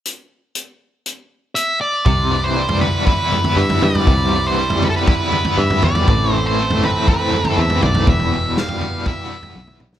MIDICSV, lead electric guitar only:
0, 0, Header, 1, 2, 480
1, 0, Start_track
1, 0, Tempo, 503356
1, 46, Time_signature, 4, 2, 24, 8
1, 4846, Tempo, 497925
1, 9582, End_track
2, 0, Start_track
2, 0, Title_t, "Lead electric guitar"
2, 0, Program_c, 0, 29
2, 1479, Note_on_c, 0, 76, 78
2, 1707, Note_off_c, 0, 76, 0
2, 1725, Note_on_c, 0, 74, 88
2, 2327, Note_on_c, 0, 72, 78
2, 2346, Note_off_c, 0, 74, 0
2, 2679, Note_off_c, 0, 72, 0
2, 2683, Note_on_c, 0, 71, 69
2, 2908, Note_off_c, 0, 71, 0
2, 2920, Note_on_c, 0, 71, 77
2, 3402, Note_on_c, 0, 76, 93
2, 3419, Note_off_c, 0, 71, 0
2, 3651, Note_off_c, 0, 76, 0
2, 3655, Note_on_c, 0, 74, 96
2, 4260, Note_on_c, 0, 72, 88
2, 4268, Note_off_c, 0, 74, 0
2, 4619, Note_off_c, 0, 72, 0
2, 4623, Note_on_c, 0, 71, 82
2, 4663, Note_off_c, 0, 71, 0
2, 4667, Note_on_c, 0, 69, 66
2, 4726, Note_off_c, 0, 69, 0
2, 4732, Note_on_c, 0, 71, 80
2, 4830, Note_off_c, 0, 71, 0
2, 4841, Note_on_c, 0, 71, 89
2, 5340, Note_off_c, 0, 71, 0
2, 5340, Note_on_c, 0, 76, 96
2, 5558, Note_off_c, 0, 76, 0
2, 5579, Note_on_c, 0, 74, 101
2, 6051, Note_off_c, 0, 74, 0
2, 6051, Note_on_c, 0, 72, 101
2, 6183, Note_off_c, 0, 72, 0
2, 6183, Note_on_c, 0, 72, 83
2, 6512, Note_off_c, 0, 72, 0
2, 6547, Note_on_c, 0, 71, 83
2, 6769, Note_off_c, 0, 71, 0
2, 6781, Note_on_c, 0, 71, 92
2, 7262, Note_on_c, 0, 76, 97
2, 7269, Note_off_c, 0, 71, 0
2, 7490, Note_off_c, 0, 76, 0
2, 7494, Note_on_c, 0, 74, 105
2, 7715, Note_off_c, 0, 74, 0
2, 7753, Note_on_c, 0, 76, 115
2, 8225, Note_off_c, 0, 76, 0
2, 8228, Note_on_c, 0, 77, 98
2, 8695, Note_off_c, 0, 77, 0
2, 8699, Note_on_c, 0, 76, 92
2, 9372, Note_off_c, 0, 76, 0
2, 9582, End_track
0, 0, End_of_file